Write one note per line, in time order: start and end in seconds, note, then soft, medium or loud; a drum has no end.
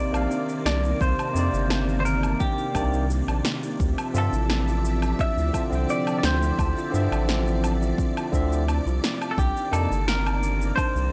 0.00 9.33 C3 medium
0.00 3.76 D#3 medium
0.00 0.11 A#3 medium
0.00 3.76 A#3 medium
0.00 0.12 C4 medium
0.00 0.11 D#4 medium
0.00 0.12 D5 medium
0.00 0.61 D5 loud
0.00 3.75 D5 medium
0.11 0.27 A#1 medium
0.11 1.30 C3 medium
0.11 1.32 D#3 medium
0.11 1.31 A#3 medium
0.11 low woodblock medium
0.11 shaker soft
0.16 1.33 F5 loud
0.31 0.41 D4 medium
0.31 shaker soft
0.48 0.64 D#4 medium
0.48 shaker soft
0.66 0.94 C2 loud
0.66 1.01 D5 loud
0.66 snare medium
0.66 low woodblock medium
0.66 shaker medium
0.84 0.99 G4 medium
0.84 shaker soft
1.00 1.15 C2 loud
1.00 1.17 C4 medium
1.00 1.99 C5 loud
1.00 kick loud
1.00 shaker soft
1.19 low woodblock medium
1.19 shaker soft
1.33 1.50 F2 medium
1.33 2.70 C3 loud
1.33 2.71 D#3 medium
1.33 2.71 A#3 medium
1.33 1.45 D4 medium
1.33 shaker medium
1.39 2.73 D5 loud
1.53 2.35 G1 loud
1.53 1.68 D#4 medium
1.53 shaker soft
1.70 snare medium
1.70 low woodblock medium
1.70 shaker soft
1.88 2.04 G4 medium
1.88 shaker soft
2.00 2.05 C5 medium
2.05 2.22 C4 medium
2.05 2.41 A#4 loud
2.05 shaker medium
2.23 low woodblock medium
2.23 shaker soft
2.40 2.50 D4 medium
2.40 3.06 G4 medium
2.40 kick loud
2.40 shaker soft
2.58 2.73 D#4 medium
2.58 shaker soft
2.74 3.22 C2 loud
2.74 3.05 C3 loud
2.74 3.06 D#3 medium
2.74 3.05 A#3 medium
2.74 2.92 D4 loud
2.74 3.06 D5 loud
2.74 kick medium
2.74 low woodblock medium
2.74 shaker medium
2.93 3.02 D#4 medium
2.93 shaker soft
3.10 3.26 G4 loud
3.10 shaker soft
3.28 3.41 A#1 medium
3.28 low woodblock medium
3.28 shaker soft
3.45 3.61 G4 medium
3.45 snare medium
3.45 shaker medium
3.63 3.78 G4 loud
3.63 shaker soft
3.79 3.94 D2 medium
3.79 9.34 F3 medium
3.79 3.96 C4 medium
3.79 11.12 D5 medium
3.79 9.33 E5 loud
3.79 kick loud
3.79 shaker soft
3.98 low woodblock medium
3.98 shaker soft
4.14 4.29 G2 loud
4.14 4.33 D3 medium
4.14 4.34 C4 medium
4.14 4.24 D4 medium
4.14 4.34 F4 medium
4.14 4.35 E5 loud
4.14 shaker medium
4.18 5.20 A4 loud
4.33 5.14 A1 loud
4.33 4.48 E4 medium
4.33 shaker soft
4.49 4.59 D4 medium
4.49 snare medium
4.49 low woodblock medium
4.49 shaker soft
4.68 4.83 F4 medium
4.68 shaker soft
4.85 5.01 C4 medium
4.85 shaker medium
5.02 low woodblock medium
5.02 shaker soft
5.19 5.29 D4 medium
5.19 5.86 E5 loud
5.19 kick loud
5.19 shaker soft
5.37 5.51 D2 loud
5.37 5.53 E4 medium
5.37 shaker soft
5.52 5.68 D3 medium
5.52 5.69 C4 medium
5.52 5.64 D4 medium
5.52 5.70 F4 medium
5.52 5.70 E5 medium
5.52 kick medium
5.52 low woodblock medium
5.52 shaker medium
5.69 5.86 C2 loud
5.69 6.88 D3 medium
5.69 6.90 F3 medium
5.69 6.89 C4 medium
5.69 5.87 F4 medium
5.69 shaker soft
5.75 6.91 G5 medium
5.89 6.05 C4 medium
5.89 6.16 D5 loud
5.89 shaker soft
6.07 low woodblock medium
6.07 shaker soft
6.19 6.25 D5 medium
6.23 6.52 D2 loud
6.23 6.34 D4 medium
6.23 6.90 C5 medium
6.23 snare medium
6.23 shaker medium
6.43 6.57 E4 medium
6.43 shaker soft
6.58 6.73 D2 medium
6.58 6.69 D4 medium
6.58 kick loud
6.58 low woodblock medium
6.58 shaker soft
6.76 6.92 F4 medium
6.76 shaker soft
6.90 7.08 G2 loud
6.90 8.27 D3 loud
6.90 8.29 F3 loud
6.90 8.28 C4 medium
6.90 7.10 C4 medium
6.95 8.30 E5 loud
6.95 shaker medium
7.12 7.93 A1 loud
7.12 low woodblock medium
7.12 shaker soft
7.28 7.38 D4 medium
7.28 snare medium
7.28 shaker soft
7.46 7.62 E4 medium
7.46 shaker soft
7.63 7.73 D4 medium
7.63 low woodblock medium
7.63 shaker medium
7.81 7.97 F4 medium
7.81 shaker soft
7.98 8.15 C4 medium
7.98 kick loud
7.98 shaker soft
8.17 low woodblock medium
8.17 shaker soft
8.32 8.80 D2 loud
8.32 8.63 D3 loud
8.32 8.64 F3 medium
8.32 8.63 C4 loud
8.32 8.43 D4 medium
8.32 8.64 E5 loud
8.32 kick medium
8.32 shaker medium
8.52 8.67 E4 medium
8.52 shaker soft
8.68 8.78 D4 medium
8.68 low woodblock medium
8.68 shaker soft
8.86 9.00 C2 medium
8.86 9.02 F4 medium
8.86 shaker soft
9.03 9.19 C4 medium
9.03 snare medium
9.03 shaker medium
9.22 low woodblock medium
9.22 shaker soft
9.31 9.38 A4 medium
9.38 9.52 C2 medium
9.38 11.12 C3 medium
9.38 11.12 D#3 medium
9.38 11.12 A#3 medium
9.38 9.48 D4 medium
9.38 9.74 G4 loud
9.38 kick loud
9.38 shaker soft
9.57 9.72 D#4 medium
9.57 shaker soft
9.71 9.87 F2 loud
9.71 9.91 C3 loud
9.71 9.92 A#3 medium
9.71 9.83 D4 medium
9.71 9.92 D#4 medium
9.71 10.07 A4 loud
9.71 9.93 D5 loud
9.71 low woodblock medium
9.71 shaker medium
9.91 10.72 G1 loud
9.91 10.06 G4 medium
9.91 shaker soft
10.08 10.25 C4 medium
10.08 10.75 A#4 loud
10.08 snare medium
10.08 shaker soft
10.27 low woodblock medium
10.27 shaker soft
10.43 10.52 D4 medium
10.43 shaker medium
10.61 10.76 D#4 medium
10.61 shaker soft
10.76 10.88 D4 medium
10.76 11.12 C5 loud
10.76 kick loud
10.76 low woodblock medium
10.76 shaker soft
10.96 11.09 C2 loud
10.96 11.11 G4 medium
10.96 shaker soft